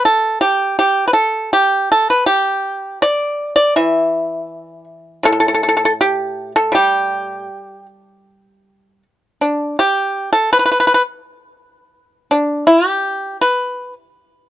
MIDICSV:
0, 0, Header, 1, 2, 480
1, 0, Start_track
1, 0, Tempo, 751880
1, 501, Time_signature, 2, 2, 24, 8
1, 1466, Tempo, 738007
1, 4346, Tempo, 763359
1, 6266, Tempo, 722022
1, 8186, Tempo, 740741
1, 9368, End_track
2, 0, Start_track
2, 0, Title_t, "Pipa"
2, 0, Program_c, 0, 105
2, 33, Note_on_c, 0, 69, 93
2, 249, Note_off_c, 0, 69, 0
2, 261, Note_on_c, 0, 67, 84
2, 484, Note_off_c, 0, 67, 0
2, 503, Note_on_c, 0, 67, 87
2, 684, Note_off_c, 0, 67, 0
2, 687, Note_on_c, 0, 71, 61
2, 721, Note_off_c, 0, 71, 0
2, 723, Note_on_c, 0, 69, 79
2, 958, Note_off_c, 0, 69, 0
2, 976, Note_on_c, 0, 67, 75
2, 1206, Note_off_c, 0, 67, 0
2, 1223, Note_on_c, 0, 69, 71
2, 1337, Note_off_c, 0, 69, 0
2, 1341, Note_on_c, 0, 71, 68
2, 1443, Note_off_c, 0, 71, 0
2, 1445, Note_on_c, 0, 67, 81
2, 1911, Note_off_c, 0, 67, 0
2, 1937, Note_on_c, 0, 74, 94
2, 2278, Note_off_c, 0, 74, 0
2, 2286, Note_on_c, 0, 74, 92
2, 2410, Note_off_c, 0, 74, 0
2, 2418, Note_on_c, 0, 52, 54
2, 2420, Note_on_c, 0, 76, 87
2, 3119, Note_off_c, 0, 76, 0
2, 3376, Note_on_c, 0, 45, 61
2, 3390, Note_on_c, 0, 69, 111
2, 3428, Note_off_c, 0, 69, 0
2, 3436, Note_on_c, 0, 69, 73
2, 3477, Note_off_c, 0, 69, 0
2, 3485, Note_on_c, 0, 69, 80
2, 3529, Note_off_c, 0, 69, 0
2, 3538, Note_on_c, 0, 69, 67
2, 3571, Note_off_c, 0, 69, 0
2, 3579, Note_on_c, 0, 69, 72
2, 3623, Note_off_c, 0, 69, 0
2, 3635, Note_on_c, 0, 69, 57
2, 3662, Note_off_c, 0, 69, 0
2, 3670, Note_on_c, 0, 69, 73
2, 3717, Note_off_c, 0, 69, 0
2, 3724, Note_on_c, 0, 69, 65
2, 3768, Note_off_c, 0, 69, 0
2, 3779, Note_on_c, 0, 69, 87
2, 3820, Note_off_c, 0, 69, 0
2, 3861, Note_off_c, 0, 52, 0
2, 3880, Note_on_c, 0, 67, 95
2, 4209, Note_off_c, 0, 67, 0
2, 4238, Note_on_c, 0, 69, 97
2, 4342, Note_on_c, 0, 55, 59
2, 4345, Note_off_c, 0, 69, 0
2, 4361, Note_on_c, 0, 67, 85
2, 4824, Note_off_c, 0, 45, 0
2, 5058, Note_off_c, 0, 67, 0
2, 5793, Note_off_c, 0, 55, 0
2, 6037, Note_on_c, 0, 62, 64
2, 6253, Note_off_c, 0, 62, 0
2, 6274, Note_on_c, 0, 67, 83
2, 6611, Note_off_c, 0, 67, 0
2, 6630, Note_on_c, 0, 69, 84
2, 6743, Note_off_c, 0, 69, 0
2, 6764, Note_on_c, 0, 71, 85
2, 6799, Note_off_c, 0, 71, 0
2, 6807, Note_on_c, 0, 71, 63
2, 6841, Note_off_c, 0, 71, 0
2, 6849, Note_on_c, 0, 71, 73
2, 6882, Note_off_c, 0, 71, 0
2, 6889, Note_on_c, 0, 71, 58
2, 6938, Note_off_c, 0, 71, 0
2, 6945, Note_on_c, 0, 71, 68
2, 6985, Note_off_c, 0, 71, 0
2, 6993, Note_on_c, 0, 71, 61
2, 7032, Note_off_c, 0, 71, 0
2, 7040, Note_on_c, 0, 71, 68
2, 7086, Note_off_c, 0, 71, 0
2, 7950, Note_on_c, 0, 62, 74
2, 8171, Note_off_c, 0, 62, 0
2, 8188, Note_on_c, 0, 64, 91
2, 8330, Note_off_c, 0, 64, 0
2, 8330, Note_on_c, 0, 67, 91
2, 8637, Note_off_c, 0, 67, 0
2, 8671, Note_on_c, 0, 71, 78
2, 9004, Note_off_c, 0, 71, 0
2, 9368, End_track
0, 0, End_of_file